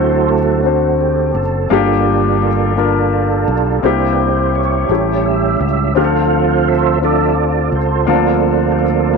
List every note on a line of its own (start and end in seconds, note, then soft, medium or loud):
0.00 1.32 D2 medium
0.00 0.61 D3 medium
0.00 0.61 F#3 soft
0.00 0.28 C4 soft
0.00 0.33 C4 medium
0.00 0.34 D4 medium
0.00 0.61 E4 soft
0.00 0.28 F#4 medium
0.00 0.34 F#4 medium
0.00 0.38 A4 medium
0.00 0.61 A4 medium
0.00 0.30 C5 medium
0.29 1.32 A3 medium
0.29 1.31 C4 medium
0.29 0.96 F#4 medium
0.63 1.40 C4 medium
0.63 1.40 D4 soft
0.63 1.41 F#4 soft
0.63 1.41 C5 medium
1.00 1.37 G4 medium
1.35 1.68 F#1 medium
1.35 1.69 A4 medium
1.69 3.44 G1 medium
1.69 2.73 G2 medium
1.69 2.72 G3 medium
1.69 2.46 A#3 medium
1.69 2.73 A#3 soft
1.69 2.73 D4 medium
1.69 2.47 D4 medium
1.69 2.73 F4 medium
1.69 2.47 F4 medium
1.69 2.48 G4 medium
1.69 2.07 A4 medium
2.07 2.43 G4 medium
2.42 2.75 A4 medium
2.76 3.52 A#3 medium
2.76 3.53 D4 soft
2.76 3.80 D4 medium
2.76 3.80 F4 medium
2.76 3.53 F4 soft
2.76 3.87 A4 medium
2.76 3.53 A#4 medium
3.48 3.81 B1 medium
3.83 4.86 C2 medium
3.83 4.86 C3 medium
3.83 4.58 A#3 medium
3.83 4.31 A#3 soft
3.83 4.59 C4 medium
3.83 4.31 D4 soft
3.83 4.60 E4 medium
3.83 4.54 E4 medium
3.83 4.54 G4 medium
3.83 4.60 G4 medium
3.83 4.13 C5 medium
4.12 4.19 B4 medium
4.19 4.52 C5 medium
4.55 4.89 E4 medium
4.55 5.57 G4 medium
4.55 5.28 C#5 medium
4.89 5.56 A1 medium
4.89 5.92 A2 soft
4.89 5.92 G3 soft
4.89 5.65 A3 soft
4.89 5.65 C#4 soft
4.89 5.92 C#4 soft
4.89 5.92 E4 medium
4.89 5.66 E4 soft
4.89 5.66 G4 medium
5.26 5.60 E5 medium
5.60 5.93 C#2 medium
5.60 5.94 E5 medium
5.95 7.69 D2 medium
5.95 6.98 D3 medium
5.95 6.98 F3 soft
5.95 6.71 C4 medium
5.95 6.98 C4 soft
5.95 6.71 D4 medium
5.95 6.72 F4 medium
5.95 6.99 F4 medium
5.95 6.03 G4 medium
5.95 6.99 A4 medium
5.95 6.99 C5 medium
5.95 6.69 F5 medium
6.04 6.75 A4 medium
6.68 7.00 E5 medium
7.01 7.35 F3 soft
7.01 7.77 C4 soft
7.01 7.35 C4 soft
7.01 7.77 D4 soft
7.01 7.78 F4 soft
7.01 7.78 A4 medium
7.01 8.05 A4 medium
7.01 7.70 D5 medium
7.01 7.35 E5 soft
7.05 8.06 F4 medium
7.72 8.05 C#2 medium
7.72 8.07 C5 medium
8.07 9.17 D2 medium
8.07 9.10 D3 medium
8.07 9.17 F3 medium
8.07 8.83 A#3 medium
8.07 8.14 C4 medium
8.07 9.17 C4 soft
8.07 9.17 D4 medium
8.07 8.79 F4 medium
8.07 8.84 F4 medium
8.07 8.74 A4 medium
8.07 8.84 A4 medium
8.14 8.87 D4 medium
8.72 8.79 G4 medium
8.79 9.17 A#3 medium
8.79 9.17 F4 medium
8.79 9.17 A4 soft
9.13 9.17 A#3 medium
9.13 9.17 D4 soft